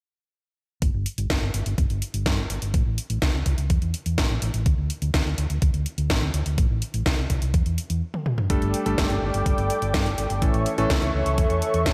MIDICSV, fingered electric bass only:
0, 0, Header, 1, 2, 480
1, 0, Start_track
1, 0, Tempo, 480000
1, 820, Time_signature, 4, 2, 24, 8
1, 11933, End_track
2, 0, Start_track
2, 0, Title_t, "Fingered electric bass"
2, 0, Program_c, 0, 33
2, 821, Note_on_c, 0, 31, 94
2, 924, Note_off_c, 0, 31, 0
2, 940, Note_on_c, 0, 31, 65
2, 1044, Note_off_c, 0, 31, 0
2, 1180, Note_on_c, 0, 31, 71
2, 1284, Note_off_c, 0, 31, 0
2, 1301, Note_on_c, 0, 31, 89
2, 1404, Note_off_c, 0, 31, 0
2, 1420, Note_on_c, 0, 31, 67
2, 1523, Note_off_c, 0, 31, 0
2, 1540, Note_on_c, 0, 31, 82
2, 1644, Note_off_c, 0, 31, 0
2, 1660, Note_on_c, 0, 31, 72
2, 1763, Note_off_c, 0, 31, 0
2, 1780, Note_on_c, 0, 31, 86
2, 1884, Note_off_c, 0, 31, 0
2, 1900, Note_on_c, 0, 31, 68
2, 2003, Note_off_c, 0, 31, 0
2, 2139, Note_on_c, 0, 31, 74
2, 2243, Note_off_c, 0, 31, 0
2, 2260, Note_on_c, 0, 43, 92
2, 2364, Note_off_c, 0, 43, 0
2, 2381, Note_on_c, 0, 31, 69
2, 2484, Note_off_c, 0, 31, 0
2, 2500, Note_on_c, 0, 31, 84
2, 2604, Note_off_c, 0, 31, 0
2, 2620, Note_on_c, 0, 31, 72
2, 2724, Note_off_c, 0, 31, 0
2, 2740, Note_on_c, 0, 33, 92
2, 2844, Note_off_c, 0, 33, 0
2, 2861, Note_on_c, 0, 33, 69
2, 2964, Note_off_c, 0, 33, 0
2, 3100, Note_on_c, 0, 33, 75
2, 3203, Note_off_c, 0, 33, 0
2, 3221, Note_on_c, 0, 37, 92
2, 3324, Note_off_c, 0, 37, 0
2, 3341, Note_on_c, 0, 37, 71
2, 3444, Note_off_c, 0, 37, 0
2, 3460, Note_on_c, 0, 37, 83
2, 3564, Note_off_c, 0, 37, 0
2, 3580, Note_on_c, 0, 37, 77
2, 3683, Note_off_c, 0, 37, 0
2, 3700, Note_on_c, 0, 40, 93
2, 3804, Note_off_c, 0, 40, 0
2, 3819, Note_on_c, 0, 40, 70
2, 3923, Note_off_c, 0, 40, 0
2, 4060, Note_on_c, 0, 40, 75
2, 4164, Note_off_c, 0, 40, 0
2, 4180, Note_on_c, 0, 33, 94
2, 4284, Note_off_c, 0, 33, 0
2, 4300, Note_on_c, 0, 33, 72
2, 4404, Note_off_c, 0, 33, 0
2, 4421, Note_on_c, 0, 33, 86
2, 4524, Note_off_c, 0, 33, 0
2, 4540, Note_on_c, 0, 33, 74
2, 4643, Note_off_c, 0, 33, 0
2, 4660, Note_on_c, 0, 38, 94
2, 4764, Note_off_c, 0, 38, 0
2, 4780, Note_on_c, 0, 38, 69
2, 4883, Note_off_c, 0, 38, 0
2, 5020, Note_on_c, 0, 38, 77
2, 5124, Note_off_c, 0, 38, 0
2, 5260, Note_on_c, 0, 38, 70
2, 5364, Note_off_c, 0, 38, 0
2, 5380, Note_on_c, 0, 38, 85
2, 5484, Note_off_c, 0, 38, 0
2, 5500, Note_on_c, 0, 38, 75
2, 5604, Note_off_c, 0, 38, 0
2, 5621, Note_on_c, 0, 38, 91
2, 5724, Note_off_c, 0, 38, 0
2, 5739, Note_on_c, 0, 38, 71
2, 5843, Note_off_c, 0, 38, 0
2, 5980, Note_on_c, 0, 38, 76
2, 6083, Note_off_c, 0, 38, 0
2, 6100, Note_on_c, 0, 33, 90
2, 6203, Note_off_c, 0, 33, 0
2, 6220, Note_on_c, 0, 38, 72
2, 6324, Note_off_c, 0, 38, 0
2, 6340, Note_on_c, 0, 38, 85
2, 6444, Note_off_c, 0, 38, 0
2, 6460, Note_on_c, 0, 38, 76
2, 6564, Note_off_c, 0, 38, 0
2, 6580, Note_on_c, 0, 33, 97
2, 6684, Note_off_c, 0, 33, 0
2, 6700, Note_on_c, 0, 33, 71
2, 6803, Note_off_c, 0, 33, 0
2, 6940, Note_on_c, 0, 33, 78
2, 7043, Note_off_c, 0, 33, 0
2, 7060, Note_on_c, 0, 36, 99
2, 7164, Note_off_c, 0, 36, 0
2, 7180, Note_on_c, 0, 36, 71
2, 7284, Note_off_c, 0, 36, 0
2, 7300, Note_on_c, 0, 36, 85
2, 7403, Note_off_c, 0, 36, 0
2, 7420, Note_on_c, 0, 36, 76
2, 7524, Note_off_c, 0, 36, 0
2, 7540, Note_on_c, 0, 40, 95
2, 7643, Note_off_c, 0, 40, 0
2, 7661, Note_on_c, 0, 40, 74
2, 7764, Note_off_c, 0, 40, 0
2, 7901, Note_on_c, 0, 40, 76
2, 8004, Note_off_c, 0, 40, 0
2, 8500, Note_on_c, 0, 31, 93
2, 8604, Note_off_c, 0, 31, 0
2, 8620, Note_on_c, 0, 31, 70
2, 8724, Note_off_c, 0, 31, 0
2, 8861, Note_on_c, 0, 31, 78
2, 8964, Note_off_c, 0, 31, 0
2, 8980, Note_on_c, 0, 31, 95
2, 9084, Note_off_c, 0, 31, 0
2, 9101, Note_on_c, 0, 31, 72
2, 9204, Note_off_c, 0, 31, 0
2, 9221, Note_on_c, 0, 31, 91
2, 9324, Note_off_c, 0, 31, 0
2, 9341, Note_on_c, 0, 31, 75
2, 9444, Note_off_c, 0, 31, 0
2, 9460, Note_on_c, 0, 31, 93
2, 9564, Note_off_c, 0, 31, 0
2, 9581, Note_on_c, 0, 31, 73
2, 9684, Note_off_c, 0, 31, 0
2, 9821, Note_on_c, 0, 31, 80
2, 9924, Note_off_c, 0, 31, 0
2, 9940, Note_on_c, 0, 43, 91
2, 10044, Note_off_c, 0, 43, 0
2, 10061, Note_on_c, 0, 31, 72
2, 10164, Note_off_c, 0, 31, 0
2, 10181, Note_on_c, 0, 31, 91
2, 10284, Note_off_c, 0, 31, 0
2, 10301, Note_on_c, 0, 31, 77
2, 10404, Note_off_c, 0, 31, 0
2, 10421, Note_on_c, 0, 33, 98
2, 10524, Note_off_c, 0, 33, 0
2, 10540, Note_on_c, 0, 33, 72
2, 10644, Note_off_c, 0, 33, 0
2, 10781, Note_on_c, 0, 33, 77
2, 10884, Note_off_c, 0, 33, 0
2, 10900, Note_on_c, 0, 37, 98
2, 11004, Note_off_c, 0, 37, 0
2, 11021, Note_on_c, 0, 37, 73
2, 11124, Note_off_c, 0, 37, 0
2, 11140, Note_on_c, 0, 37, 85
2, 11244, Note_off_c, 0, 37, 0
2, 11260, Note_on_c, 0, 37, 78
2, 11364, Note_off_c, 0, 37, 0
2, 11380, Note_on_c, 0, 40, 92
2, 11484, Note_off_c, 0, 40, 0
2, 11501, Note_on_c, 0, 40, 73
2, 11604, Note_off_c, 0, 40, 0
2, 11741, Note_on_c, 0, 40, 81
2, 11844, Note_off_c, 0, 40, 0
2, 11860, Note_on_c, 0, 33, 96
2, 11933, Note_off_c, 0, 33, 0
2, 11933, End_track
0, 0, End_of_file